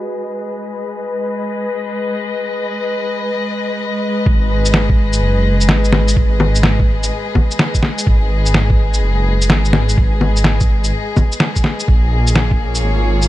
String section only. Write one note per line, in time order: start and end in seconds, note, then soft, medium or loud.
0.00 11.88 G#3 medium
0.00 4.26 G#4 medium
0.00 11.88 B4 medium
0.00 12.77 D#5 medium
4.50 13.28 G#4 medium
11.88 13.28 A#3 medium
12.13 13.28 F4 medium
12.60 13.28 C#5 medium